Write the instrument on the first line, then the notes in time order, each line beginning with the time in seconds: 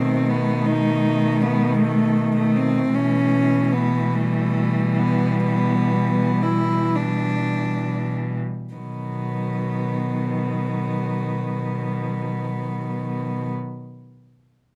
cello
Already playing: B2 D#3 A3 C4
0.29 B3
0.66 D#4
1.41 B3
1.79 A3
2.37 A3
2.56 C4
2.93 B2 E3 C#4
3.73 B3
4.13 G3 A3
4.98 B3
5.45 B3
6.43 E4
6.96 D4
8.74 B2 D#3 F#3 B3